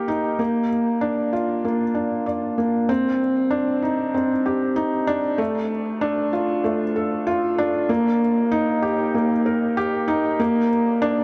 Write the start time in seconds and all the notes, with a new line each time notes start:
Already playing: A#3 D#4 G4 A#4
0.08 D#4
0.39 A#3
1.01 D4
1.33 F4
1.65 A#3
1.95 D4
2.26 D5
2.58 A#3
2.89 C2 C4
3.51 D4
3.83 D#4
4.14 C4
4.46 G4
4.76 D#4
5.07 D4
5.38 D2 A3
6.01 D4
6.33 F4
6.64 A3
6.96 A4
7.27 F4
7.58 D4
7.89 D#2 A#3
8.52 D#4
8.82 G4
9.15 A#3
9.46 A#4
9.77 G4
10.08 D#4
10.40 D2 A#3
11.02 D4